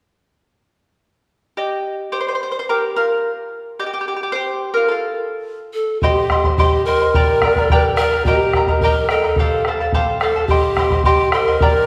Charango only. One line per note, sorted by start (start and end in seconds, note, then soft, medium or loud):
1.57 2.08 G4 medium
1.57 2.08 D#5 soft
2.12 2.19 G4 medium
2.12 2.19 C5 medium
2.20 2.27 C5 medium
2.29 2.34 C5 medium
2.35 2.41 C5 medium
2.43 2.49 C5 medium
2.52 2.57 C5 medium
2.59 2.65 C5 medium
2.69 2.95 G4 medium
2.69 2.95 A#4 medium
2.96 3.48 F4 medium
2.96 3.48 A#4 medium
3.80 3.85 G4 medium
3.80 3.86 D#5 medium
3.86 3.92 G4 medium
3.94 4.00 G4 medium
4.01 4.07 G4 medium
4.08 4.15 G4 medium
4.16 4.22 G4 soft
4.23 4.31 G4 medium
4.32 4.73 G4 medium
4.32 4.77 C5 medium
4.74 4.90 F4 medium
4.74 4.90 A#4 medium
4.88 5.71 F4 medium
4.88 5.69 A4 medium
6.03 6.31 G4 medium
6.03 6.30 C5 medium
6.03 6.30 D#5 medium
6.03 6.29 G5 medium
6.03 6.31 C6 medium
6.31 6.45 C5 soft
6.31 6.45 D#5 medium
6.31 6.45 G5 soft
6.31 6.44 C6 medium
6.45 6.58 C5 soft
6.45 6.58 D#5 soft
6.45 6.58 C6 soft
6.59 6.87 G4 medium
6.59 6.86 C5 medium
6.59 6.86 D#5 medium
6.59 6.86 G5 medium
6.59 6.87 C6 medium
6.87 7.01 C5 medium
6.87 7.01 D#5 medium
6.87 7.01 G5 medium
6.87 7.00 C6 medium
7.02 7.15 C5 soft
7.02 7.15 D#5 soft
7.02 7.15 C6 soft
7.15 7.43 G4 medium
7.15 7.42 A#4 medium
7.15 7.43 D5 medium
7.15 7.42 G5 medium
7.15 7.43 A#5 medium
7.43 7.57 A#4 medium
7.43 7.57 D5 medium
7.43 7.57 G5 medium
7.43 7.57 A#5 medium
7.58 7.70 A#4 soft
7.58 7.71 D5 soft
7.58 7.71 A#5 medium
7.72 7.99 G4 medium
7.72 7.98 A#4 medium
7.72 7.99 D5 medium
7.72 7.97 G5 medium
7.72 7.99 A#5 medium
7.99 8.13 A#4 medium
7.99 8.13 D5 medium
7.99 8.12 G5 soft
7.99 8.12 A#5 medium
8.13 8.26 A#4 soft
8.13 8.27 D5 soft
8.13 8.27 A#5 soft
8.27 8.55 G4 medium
8.27 8.55 A#4 medium
8.27 8.55 D#5 medium
8.27 8.54 G5 medium
8.27 8.55 A#5 medium
8.55 8.69 A#4 medium
8.55 8.68 D#5 medium
8.55 8.69 G5 medium
8.55 8.67 A#5 medium
8.68 8.83 A#4 soft
8.68 8.83 D#5 soft
8.68 8.82 A#5 medium
8.83 9.11 G4 medium
8.83 9.10 A#4 medium
8.83 9.10 D#5 medium
8.83 9.09 G5 medium
8.83 9.11 A#5 medium
9.10 9.24 A#4 medium
9.10 9.24 D#5 medium
9.10 9.24 G5 medium
9.10 9.23 A#5 medium
9.24 9.39 A#4 soft
9.24 9.39 D#5 soft
9.24 9.38 A#5 soft
9.39 9.66 G4 medium
9.39 9.67 A4 medium
9.39 9.66 C5 medium
9.39 9.67 F5 medium
9.39 9.67 A5 medium
9.67 9.81 A4 medium
9.67 9.81 C5 medium
9.67 9.80 F5 medium
9.67 9.79 A5 medium
9.80 9.93 A4 soft
9.80 9.94 F5 soft
9.80 9.93 A5 medium
9.94 10.22 G4 medium
9.94 10.21 A4 medium
9.94 10.21 C5 medium
9.94 10.22 F5 medium
9.94 10.22 A5 medium
10.22 10.36 A4 medium
10.22 10.36 C5 soft
10.22 10.35 F5 medium
10.22 10.35 A5 medium
10.36 10.50 A4 soft
10.36 10.50 F5 soft
10.36 10.50 A5 soft
10.50 10.78 G4 medium
10.50 10.77 C5 medium
10.50 10.78 D#5 medium
10.50 10.77 G5 medium
10.50 10.78 C6 medium
10.78 10.92 C5 medium
10.78 10.91 D#5 medium
10.78 10.92 G5 soft
10.78 10.91 C6 medium
10.92 11.04 C5 soft
10.92 11.05 D#5 soft
10.92 11.05 C6 soft
11.05 11.33 G4 medium
11.05 11.33 C5 medium
11.05 11.34 D#5 medium
11.05 11.33 G5 medium
11.05 11.34 C6 medium
11.34 11.48 C5 medium
11.34 11.47 D#5 medium
11.34 11.48 G5 medium
11.34 11.46 C6 medium
11.48 11.62 C5 soft
11.48 11.62 D#5 soft
11.48 11.61 C6 soft
11.62 11.86 G4 medium
11.62 11.86 A#4 medium
11.62 11.86 D5 medium
11.62 11.86 G5 medium
11.62 11.86 A#5 medium